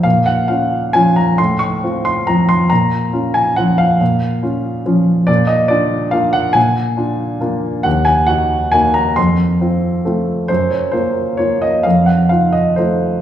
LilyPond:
\new Staff \with { instrumentName = "Grand piano" } { \time 3/4 \key bes \minor \tempo 4 = 137 << { f''8 ges''8 f''4 aes''8 bes''8 | c'''8 des'''4 c'''8 bes''8 c'''8 | bes''4. aes''8 ges''8 f''8~ | f''2. |
d''8 ees''8 d''4 f''8 ges''8 | aes''2. | ges''8 aes''8 ges''4 aes''8 bes''8 | c'''2. |
c''8 des''8 c''4 des''8 ees''8 | f''8 ges''8 f''8 ees''8 c''4 | } \\ { bes,4 <des' f'>4 <f des' f'>4 | a,4 <c' f'>4 <f c' f'>4 | bes,4 <des' f'>4 <f des' f'>4 | bes,4 <des' f'>4 <f des' f'>4 |
bes,4 <d' f'>4 <bes d' f'>4 | bes,4 <d' f'>4 <bes d' f'>4 | ees,4 <ees' ges'>4 <bes ees' ges'>4 | f,4 <c' f'>4 <a c' f'>4 |
ges,4 <bes f'>4 <bes f'>4 | f,4 <ees' f'>4 <a ees' f'>4 | } >> }